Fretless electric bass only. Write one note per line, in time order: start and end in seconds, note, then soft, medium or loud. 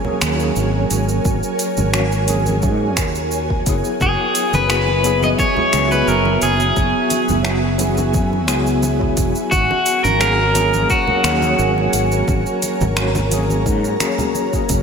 0.22 0.49 D#2 medium
0.56 0.84 G#1 medium
0.90 1.18 G#1 medium
1.25 1.39 G#1 medium
1.77 2.65 G#1 medium
2.63 2.98 G#2 medium
2.98 3.61 D#2 medium
3.66 3.81 F#1 medium
4.01 4.15 F#1 medium
4.53 5.33 F#1 medium
5.73 6.01 C#2 medium
6.07 6.35 F#1 medium
6.42 6.70 F#1 medium
6.77 6.91 F#1 medium
7.29 8.16 F#1 medium
8.14 8.48 F#2 medium
8.48 9.12 C#2 medium
9.17 9.32 E1 medium
9.52 9.67 G#1 medium
10.04 10.85 G#1 medium
11.23 11.52 D#2 medium
11.59 11.87 G#1 loud
11.93 12.21 G#1 medium
12.28 12.43 G#1 loud
12.80 13.68 G#1 medium
13.66 13.94 G#2 medium
14.70 14.83 F#1 medium